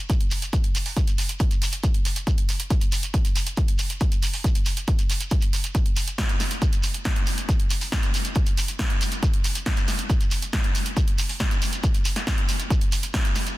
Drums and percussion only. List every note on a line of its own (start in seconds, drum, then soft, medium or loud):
0.10 kick loud
0.10 closed hi-hat medium
0.10 shekere medium
0.21 closed hi-hat medium
0.31 open hi-hat loud
0.31 shekere medium
0.42 closed hi-hat medium
0.42 shekere soft
0.53 kick loud
0.53 closed hi-hat medium
0.53 shekere medium
0.64 closed hi-hat medium
0.75 open hi-hat loud
0.75 shekere medium
0.85 open hi-hat medium
0.85 shekere soft
0.97 kick loud
0.97 closed hi-hat medium
0.97 shekere medium
1.07 closed hi-hat medium
1.07 shekere soft
1.18 open hi-hat loud
1.18 shekere medium
1.29 closed hi-hat medium
1.29 shekere soft
1.40 kick loud
1.40 closed hi-hat medium
1.40 shekere soft
1.51 closed hi-hat medium
1.51 shekere soft
1.62 open hi-hat loud
1.62 shekere medium
1.72 closed hi-hat medium
1.72 shekere soft
1.83 kick loud
1.83 closed hi-hat medium
1.83 shekere soft
1.94 closed hi-hat medium
2.05 open hi-hat loud
2.05 shekere medium
2.16 closed hi-hat medium
2.16 shekere soft
2.27 kick loud
2.27 closed hi-hat medium
2.27 shekere soft
2.38 closed hi-hat medium
2.49 open hi-hat loud
2.49 shekere medium
2.59 closed hi-hat medium
2.59 shekere soft
2.70 kick loud
2.70 closed hi-hat medium
2.70 shekere soft
2.81 closed hi-hat medium
2.81 shekere soft
2.92 open hi-hat loud
2.92 shekere medium
3.03 closed hi-hat medium
3.03 shekere soft
3.14 kick loud
3.14 closed hi-hat medium
3.14 shekere medium
3.25 closed hi-hat medium
3.25 shekere soft
3.36 open hi-hat medium
3.36 shekere medium
3.46 closed hi-hat medium
3.46 shekere soft
3.57 kick loud
3.57 closed hi-hat medium
3.57 shekere soft
3.68 closed hi-hat medium
3.79 open hi-hat loud
3.79 shekere loud
3.90 closed hi-hat medium
3.90 shekere soft
4.00 kick loud
4.00 closed hi-hat medium
4.00 shekere medium
4.12 closed hi-hat medium
4.12 shekere soft
4.23 open hi-hat loud
4.23 shekere medium
4.33 open hi-hat medium
4.33 shekere soft
4.44 kick loud
4.44 closed hi-hat medium
4.44 shekere soft
4.55 closed hi-hat medium
4.55 shekere soft
4.66 open hi-hat loud
4.66 shekere medium
4.77 closed hi-hat medium
4.77 shekere soft
4.88 kick loud
4.88 closed hi-hat medium
4.88 shekere soft
4.99 closed hi-hat medium
4.99 shekere soft
5.10 open hi-hat loud
5.10 shekere medium
5.20 closed hi-hat medium
5.20 shekere soft
5.31 kick loud
5.31 closed hi-hat medium
5.31 shekere medium
5.41 closed hi-hat medium
5.41 shekere soft
5.53 open hi-hat loud
5.53 shekere medium
5.64 closed hi-hat medium
5.64 shekere soft
5.75 kick loud
5.75 closed hi-hat medium
5.75 shekere soft
5.86 closed hi-hat medium
5.96 open hi-hat loud
5.96 shekere medium
6.08 closed hi-hat medium
6.08 shekere soft
6.18 kick loud
6.18 snare loud
6.18 closed hi-hat medium
6.18 shekere medium
6.29 closed hi-hat medium
6.29 shekere soft
6.40 snare soft
6.40 open hi-hat loud
6.40 shekere medium
6.51 closed hi-hat medium
6.51 shekere soft
6.62 kick loud
6.62 closed hi-hat medium
6.62 shekere medium
6.73 closed hi-hat medium
6.73 shekere soft
6.83 open hi-hat loud
6.83 shekere medium
6.94 closed hi-hat medium
6.94 shekere soft
7.05 kick loud
7.05 snare loud
7.05 closed hi-hat medium
7.05 shekere medium
7.16 closed hi-hat medium
7.26 open hi-hat loud
7.26 shekere medium
7.38 closed hi-hat medium
7.38 shekere soft
7.49 kick loud
7.49 closed hi-hat medium
7.49 shekere medium
7.60 closed hi-hat medium
7.70 open hi-hat loud
7.70 shekere medium
7.81 open hi-hat medium
7.81 shekere soft
7.92 kick loud
7.92 snare loud
7.92 closed hi-hat medium
7.92 shekere medium
8.03 closed hi-hat medium
8.03 shekere soft
8.14 open hi-hat loud
8.14 shekere medium
8.25 closed hi-hat medium
8.25 shekere soft
8.35 kick loud
8.35 closed hi-hat medium
8.35 shekere soft
8.46 closed hi-hat medium
8.46 shekere soft
8.57 open hi-hat loud
8.57 shekere medium
8.68 closed hi-hat medium
8.68 shekere soft
8.79 kick loud
8.79 snare loud
8.79 closed hi-hat medium
8.79 shekere soft
8.90 closed hi-hat medium
9.01 open hi-hat loud
9.01 shekere loud
9.12 closed hi-hat medium
9.12 shekere soft
9.23 kick loud
9.23 closed hi-hat medium
9.23 shekere medium
9.34 closed hi-hat medium
9.44 open hi-hat loud
9.44 shekere loud
9.55 closed hi-hat medium
9.55 shekere soft
9.66 kick loud
9.66 snare loud
9.66 closed hi-hat medium
9.66 shekere medium
9.77 closed hi-hat medium
9.77 shekere soft
9.88 snare soft
9.88 open hi-hat loud
9.88 shekere medium
9.98 closed hi-hat medium
9.98 shekere soft
10.10 kick loud
10.10 closed hi-hat medium
10.10 shekere medium
10.21 closed hi-hat medium
10.21 shekere soft
10.31 open hi-hat loud
10.31 shekere loud
10.42 closed hi-hat medium
10.42 shekere soft
10.53 kick loud
10.53 snare loud
10.53 closed hi-hat medium
10.53 shekere medium
10.64 closed hi-hat medium
10.75 open hi-hat loud
10.75 shekere medium
10.86 closed hi-hat medium
10.86 shekere soft
10.97 kick loud
10.97 closed hi-hat medium
10.97 shekere medium
11.08 closed hi-hat medium
11.18 open hi-hat loud
11.18 shekere loud
11.29 open hi-hat medium
11.29 shekere soft
11.40 kick loud
11.40 snare loud
11.40 shekere medium
11.51 closed hi-hat medium
11.51 shekere soft
11.62 open hi-hat loud
11.62 shekere medium
11.73 closed hi-hat medium
11.73 shekere soft
11.84 kick loud
11.84 closed hi-hat medium
11.84 shekere medium
11.94 closed hi-hat medium
11.94 shekere soft
12.05 open hi-hat loud
12.05 shekere loud
12.16 snare soft
12.16 closed hi-hat medium
12.16 shekere soft
12.27 kick loud
12.27 snare loud
12.27 closed hi-hat medium
12.27 shekere soft
12.38 closed hi-hat medium
12.49 open hi-hat loud
12.49 shekere medium
12.60 closed hi-hat medium
12.60 shekere soft
12.70 kick loud
12.70 closed hi-hat medium
12.70 shekere medium
12.81 closed hi-hat medium
12.92 open hi-hat loud
12.92 shekere loud
13.03 closed hi-hat medium
13.03 shekere soft
13.14 kick loud
13.14 snare loud
13.14 closed hi-hat medium
13.14 shekere medium
13.25 closed hi-hat medium
13.25 shekere soft
13.35 snare soft
13.35 open hi-hat loud
13.35 shekere medium
13.47 closed hi-hat medium
13.47 shekere soft